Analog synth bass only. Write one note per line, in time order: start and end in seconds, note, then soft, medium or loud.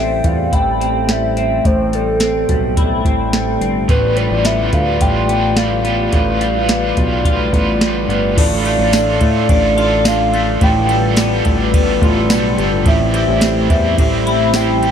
0.00 0.22 A1 medium
0.24 0.51 E2 medium
0.53 1.61 A1 loud
1.65 2.45 A1 medium
2.49 3.02 B1 medium
3.05 3.58 A1 loud
3.61 3.87 G1 medium
3.89 4.29 A1 medium
4.31 4.71 A1 medium
4.73 5.00 D2 medium
5.01 6.09 A1 loud
6.13 6.93 A1 medium
6.97 7.51 B1 loud
7.53 8.07 A1 loud
8.08 8.35 G1 medium
8.37 8.77 A1 loud
8.79 9.19 A1 loud
9.21 9.48 A2 medium
9.49 10.57 A1 loud
10.61 11.42 A1 loud
11.46 11.99 A1 loud
12.02 12.32 A1 loud
12.30 12.57 B1 loud
12.58 12.85 G1 medium
12.86 13.26 A1 loud
13.28 13.68 A1 loud
13.70 13.97 E2 loud
13.98 14.91 A1 loud